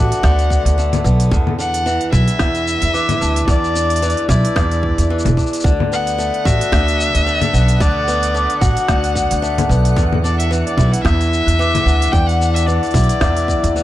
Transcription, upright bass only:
0.23 0.61 D2 loud
0.65 1.01 D2 medium
1.04 1.28 B1 medium
1.31 1.97 E2 loud
2.12 2.25 B1 loud
2.40 2.78 E2 medium
2.82 3.18 E2 medium
3.21 3.44 D2 medium
3.47 4.13 E2 loud
4.29 4.41 B1 loud
4.56 4.94 E2 medium
4.98 5.24 E2 medium
5.25 5.35 E1 loud
5.64 6.29 D2 medium
6.46 6.58 A1 loud
6.72 7.10 D2 loud
7.14 7.50 D2 medium
7.53 7.76 B1 medium
7.80 8.45 D2 medium
8.61 8.74 A1 medium
8.88 9.27 D2 loud
9.31 9.67 D2 medium
9.69 9.92 B1 medium
9.96 10.61 E2 loud
10.77 10.90 B1 loud
11.05 11.43 E2 loud
11.47 11.83 E2 medium
11.86 12.09 D2 medium
12.13 12.78 E2 loud
12.94 13.06 B1 loud
13.21 13.59 E2 loud
13.63 13.76 E2 medium
13.76 13.83 D2 medium

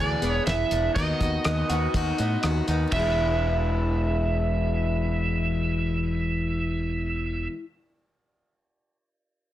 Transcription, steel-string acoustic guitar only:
0.00 0.23 E2 medium
0.00 0.23 B2 medium
0.00 0.23 E3 medium
0.00 0.23 B3 medium
0.00 0.22 D4 medium
0.00 0.21 G#4 medium
0.22 0.45 E3 soft
0.22 0.46 B3 soft
0.22 0.46 D4 soft
0.22 0.47 G#4 medium
0.46 0.71 E3 medium
0.46 0.71 B3 soft
0.46 0.72 D4 medium
0.46 0.71 G#4 medium
0.72 0.97 E3 soft
0.72 0.97 B3 soft
0.72 0.97 D4 soft
0.72 0.96 G#4 soft
0.98 1.21 D#3 medium
0.98 1.21 B3 medium
0.98 1.22 D#4 medium
0.98 1.20 F#4 medium
1.22 1.46 B3 soft
1.22 1.46 D#4 soft
1.22 1.46 F#4 soft
1.46 1.70 D#3 soft
1.46 1.71 B3 medium
1.46 1.71 D#4 medium
1.46 1.69 F#4 medium
1.70 1.94 B3 soft
1.70 1.94 D#4 soft
1.70 1.94 F#4 medium
1.95 2.19 D#3 medium
1.95 2.19 B3 medium
1.95 2.19 D#4 medium
1.95 2.19 F#4 medium
2.20 2.43 B3 soft
2.20 2.44 D#4 soft
2.20 2.44 F#4 medium
2.43 2.68 D#3 medium
2.43 2.68 B3 medium
2.43 2.68 D#4 medium
2.43 2.66 F#4 medium
2.67 2.94 B3 soft
2.67 2.93 D#4 medium
2.67 2.92 F#4 soft
2.88 7.46 E2 medium
2.92 7.50 B2 medium
2.92 7.54 E3 medium
3.00 7.58 G#3 medium
3.00 7.60 D4 medium
3.06 7.64 E4 medium

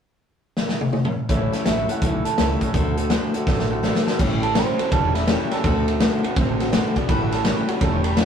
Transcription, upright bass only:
1.30 1.46 A1 medium
1.53 muted upright bass stroke medium
1.66 1.86 A1 medium
1.90 muted upright bass stroke medium
2.02 2.22 B1 medium
2.26 muted upright bass stroke medium
2.38 2.58 C#2 medium
2.74 3.16 D2 medium
3.34 muted upright bass stroke medium
3.47 3.89 A1 medium
4.07 muted upright bass stroke medium
4.20 4.61 A1 medium
4.79 muted upright bass stroke medium
4.92 5.33 E1 medium
5.52 muted upright bass stroke medium
5.64 6.06 D2 medium
6.24 muted upright bass stroke medium
6.37 6.78 A1 medium
7.09 7.51 A1 medium
7.69 muted upright bass stroke medium
7.81 8.23 E1 medium

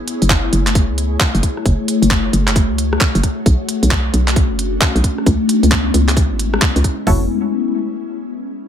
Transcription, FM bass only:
0.22 0.49 F#1 medium
0.53 0.91 F#1 medium
0.89 1.17 C#2 medium
1.35 1.41 F#1 medium
1.66 1.76 F#1 loud
2.02 2.29 F#1 medium
2.33 2.71 F#1 medium
2.70 2.97 C#2 medium
3.15 3.21 F#1 medium
3.46 3.56 B1 loud
3.83 4.10 B1 medium
4.14 4.52 B1 medium
4.50 4.78 F#1 medium
4.95 5.02 B1 medium
5.26 5.37 C#2 loud
5.63 5.90 C#2 medium
5.94 6.32 C#2 medium
6.31 6.58 G#1 medium
6.76 6.82 C#2 medium
7.07 7.28 F#1 medium

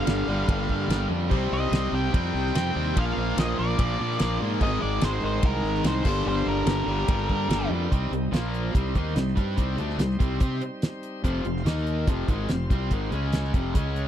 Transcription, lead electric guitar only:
0.00 1.07 F5 medium
1.53 1.91 D#5 loud
1.95 2.55 G5 loud
2.57 2.98 G5 loud
2.99 3.39 F5 loud
3.40 3.58 D#5 loud
3.59 4.37 D5 medium
4.63 4.81 D#5 loud
4.82 5.03 D5 medium
5.04 5.24 C5 medium
5.26 5.45 C5 medium
5.46 5.87 A#4 medium
5.87 6.24 C5 loud
6.29 6.48 C5 loud
6.49 7.68 A#4 medium

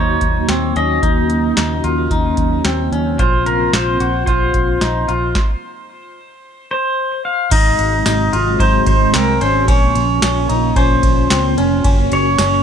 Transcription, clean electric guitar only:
0.00 0.48 D#4 medium
0.49 0.76 C4 medium
0.76 1.03 C#4 medium
1.03 1.56 D#4 medium
1.57 1.84 D#4 medium
1.84 2.11 F4 medium
2.11 2.65 D#4 medium
2.65 2.92 C4 medium
2.92 3.19 C#4 medium
3.19 3.72 F4 medium
3.73 4.00 F4 medium
4.00 4.27 F#4 medium
4.28 4.82 F4 medium
4.81 5.09 D#4 medium
5.08 5.36 F4 medium
7.52 8.05 D#4 loud
8.06 8.33 D#4 medium
8.33 8.60 F4 medium
8.60 9.14 D#4 medium
9.14 9.41 C4 medium
9.41 9.67 C#4 medium
9.68 10.21 C#4 loud
10.22 10.49 C#4 medium
10.49 10.76 D#4 medium
10.76 11.30 C#4 medium
11.30 11.57 C4 medium
11.58 11.83 C#4 medium
11.85 12.38 C#4 loud
12.39 12.63 C#4 medium

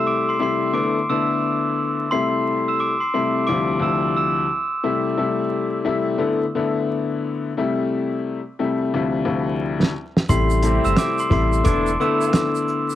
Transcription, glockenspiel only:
0.07 0.26 D6 medium
0.07 0.26 D7 medium
0.29 0.40 C6 medium
0.29 0.41 C7 medium
0.42 0.72 C6 medium
0.42 0.73 C7 medium
0.74 1.05 D6 medium
0.74 1.05 D7 medium
1.10 1.40 E6 medium
1.10 1.40 E7 medium
2.11 2.63 C6 loud
2.11 2.64 C7 medium
2.68 2.79 E6 medium
2.68 2.79 E7 medium
2.80 2.99 D6 medium
2.80 2.99 D7 medium
3.00 3.12 C6 medium
3.00 3.12 C7 medium
3.14 3.45 C6 medium
3.14 3.45 C7 medium
3.47 3.78 D6 loud
3.47 3.78 D7 medium
3.82 4.13 E6 medium
3.82 4.13 E7 medium
4.17 4.47 E6 medium
4.17 4.47 E7 medium
10.29 10.82 C6 loud
10.29 10.82 C7 medium
10.85 10.96 E6 medium
10.85 10.97 E7 medium
10.98 11.17 D6 medium
10.98 11.18 D7 medium
11.20 11.31 C6 medium
11.20 11.31 C7 medium
11.33 11.63 C6 loud
11.33 11.63 C7 medium
11.65 11.96 D6 medium
11.65 11.96 D7 medium
12.01 12.31 E6 medium
12.01 12.32 E7 medium

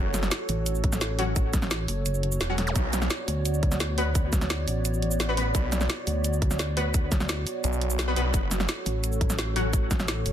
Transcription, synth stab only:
1.19 1.23 F#3 loud
1.19 1.23 C#4 medium
1.19 1.23 F#4 loud
2.49 2.54 F#3 loud
2.49 2.54 C#4 medium
2.49 2.54 F#4 loud
3.98 4.02 B3 loud
3.98 4.02 F#4 medium
3.98 4.02 B4 loud
5.29 5.33 B3 loud
5.29 5.33 F#4 medium
5.29 5.33 B4 loud
5.37 5.42 B3 loud
5.37 5.42 F#4 medium
5.37 5.42 B4 loud
6.77 6.81 B3 loud
6.77 6.81 F#4 medium
6.77 6.81 B4 loud
8.08 8.12 B3 medium
8.08 8.12 F#4 medium
8.08 8.12 B4 loud
8.16 8.21 B3 loud
8.16 8.21 F#4 medium
8.16 8.21 B4 loud
9.56 9.60 F#3 loud
9.56 9.60 C#4 medium
9.56 9.60 F#4 loud

